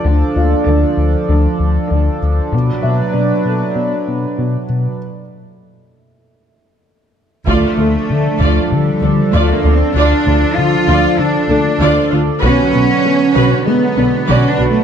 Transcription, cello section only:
0.05 0.57 D3 medium
0.67 1.19 D3 medium
1.29 1.81 D3 medium
1.91 2.42 D3 soft
2.52 3.04 B2 medium
3.14 3.66 B2 medium
3.76 4.28 B2 medium
4.37 4.90 B2 soft
7.47 8.67 A3 medium
8.71 9.33 G3 medium
9.32 9.53 A3 medium
9.53 9.74 A#3 medium
9.74 9.95 C4 medium
9.94 10.55 D4 medium
10.56 11.18 F4 medium
11.18 12.11 D4 medium
12.42 13.62 C#4 medium
13.66 14.28 B3 medium
14.28 14.48 C#4 medium
14.49 14.69 D4 medium
14.69 14.84 A3 medium

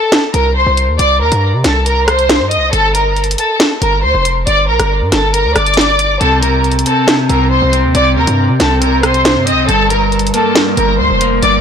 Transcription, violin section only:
0.00 0.11 A4 medium
0.00 0.11 A5 medium
0.34 0.54 A#4 medium
0.34 0.55 A#5 medium
0.56 0.76 C5 medium
0.56 0.76 C6 medium
0.99 1.20 D5 loud
0.99 1.20 D6 medium
1.21 1.42 A#4 medium
1.21 1.42 A#5 medium
1.64 1.85 A4 medium
1.64 1.85 A5 medium
1.86 2.06 A#4 medium
1.86 2.07 A#5 medium
2.08 2.49 C5 medium
2.08 2.49 C6 medium
2.51 2.72 D#5 medium
2.51 2.72 D#6 medium
2.73 2.93 A4 loud
2.73 2.94 A5 medium
2.95 3.16 A#4 medium
2.95 3.16 A#5 medium
3.39 3.59 A4 medium
3.39 3.59 A5 medium
3.81 4.02 A#4 medium
3.81 4.03 A#5 medium
4.03 4.24 C5 medium
4.03 4.24 C6 medium
4.47 4.67 D5 loud
4.47 4.68 D6 medium
4.68 4.89 A#4 medium
4.68 4.89 A#5 medium
5.12 5.33 A4 medium
5.12 5.33 A5 medium
5.34 5.55 A#4 medium
5.34 5.55 A#5 medium
5.56 6.17 D5 medium
5.56 6.17 D6 medium
6.21 6.41 A4 loud
6.21 6.42 A5 medium
6.42 6.63 A#4 medium
6.42 6.63 A#5 medium
6.86 7.07 A4 medium
6.86 7.07 A5 medium
7.29 7.50 A#4 medium
7.29 7.50 A#5 medium
7.51 7.72 C5 medium
7.51 7.72 C6 medium
7.95 8.15 D5 loud
7.95 8.16 D6 medium
8.17 8.37 A#4 medium
8.17 8.38 A#5 medium
8.60 8.80 A4 medium
8.60 8.81 A5 medium
8.81 9.02 A#4 medium
8.81 9.02 A#5 medium
9.04 9.44 C5 medium
9.04 9.45 C6 medium
9.47 9.67 D#5 medium
9.47 9.68 D#6 medium
9.68 9.89 A4 loud
9.68 9.89 A5 medium
9.91 10.11 A#4 medium
9.91 10.12 A#5 medium
10.34 10.55 A4 medium
10.34 10.55 A5 medium
10.77 10.98 A#4 medium
10.77 10.98 A#5 medium
10.99 11.20 C5 medium
10.99 11.20 C6 medium
11.43 11.61 D5 loud
11.43 11.61 D6 medium

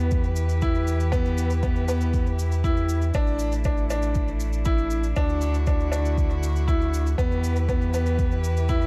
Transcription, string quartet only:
0.00 3.11 E3 medium
0.00 5.12 E4 medium
0.00 3.10 G4 medium
0.00 3.11 B4 medium
3.14 5.14 A3 medium
3.14 7.14 D4 medium
5.16 7.16 D3 medium
5.16 7.16 E4 medium
5.16 7.16 F#4 medium
7.18 8.87 E3 medium
7.18 8.87 E4 medium
7.18 8.87 G4 medium
7.18 8.87 B4 medium

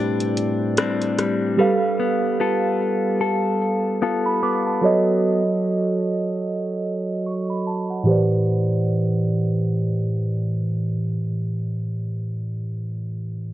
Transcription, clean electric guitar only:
0.00 1.59 A2 medium
0.00 0.77 G3 medium
0.00 0.77 C4 medium
0.00 0.78 D4 medium
0.78 1.18 G3 medium
0.78 1.68 C4 medium
0.78 2.40 D4 medium
1.18 1.58 G3 medium
1.59 4.83 G3 medium
2.00 2.39 B3 medium
2.40 4.01 B3 medium
2.40 4.01 F4 medium
2.40 3.20 A4 medium
3.21 4.03 A4 medium
4.02 4.42 B3 medium
4.02 4.93 F4 medium
4.02 5.43 A4 medium
4.43 5.42 B3 medium

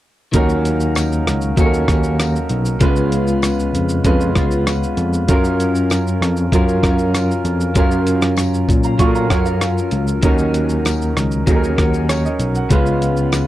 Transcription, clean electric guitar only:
0.32 1.55 D#3 medium
0.32 1.57 A#3 medium
0.36 1.59 C#4 medium
0.36 1.59 F#4 loud
1.56 1.88 D#3 medium
1.56 1.89 A#3 medium
1.56 1.88 C#4 medium
1.56 1.86 F#4 medium
1.87 2.83 A#3 medium
1.87 2.85 C#4 medium
1.87 2.81 F#4 medium
2.80 4.03 C#3 medium
2.80 4.04 G#3 medium
2.84 4.05 B3 medium
2.84 4.07 F4 loud
4.04 4.35 C#3 medium
4.04 4.36 G#3 medium
4.04 4.36 B3 medium
4.04 4.35 F4 medium
4.36 5.31 G#3 medium
4.36 5.29 B3 medium
4.36 5.31 F4 medium
5.30 6.53 C#4 loud
5.30 6.53 F4 medium
5.30 6.55 A#4 loud
6.52 6.83 F#3 medium
6.52 6.84 C#4 medium
6.52 6.84 F4 medium
6.52 6.81 A#4 medium
6.83 7.77 C#4 medium
6.83 7.77 F4 medium
6.83 7.80 A#4 medium
7.75 8.97 F#3 medium
7.75 8.99 C#4 loud
7.79 8.99 F4 loud
7.79 9.01 A#4 medium
8.98 9.29 F#3 medium
8.98 9.30 C#4 medium
8.98 9.31 F4 medium
9.02 9.29 A#4 medium
9.30 10.24 C#4 soft
9.30 10.24 F4 medium
9.30 10.27 A#4 medium
10.22 11.45 D#3 medium
10.22 11.47 C#4 medium
10.22 11.47 F#4 loud
10.27 11.48 A#4 medium
11.46 11.77 D#3 medium
11.46 11.78 C#4 medium
11.46 11.77 F#4 medium
11.46 11.75 A#4 medium
11.76 12.73 C#4 medium
11.76 12.71 F#4 soft
11.76 12.70 A#4 medium
12.69 13.47 C#3 medium
12.69 13.47 G#3 medium
12.69 13.47 B3 medium
12.75 13.47 F4 medium

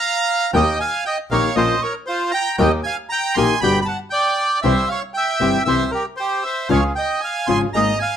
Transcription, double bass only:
0.54 0.76 D#2 medium
1.30 1.52 A#1 medium
1.56 1.78 A#1 medium
2.59 2.80 D#2 loud
3.36 3.57 A#1 medium
3.62 3.83 G1 medium
4.64 4.85 C2 medium
5.41 5.62 G1 medium
5.67 5.89 C2 medium
6.70 6.92 C#2 medium
7.48 7.70 G#1 medium
7.74 7.95 G#1 medium

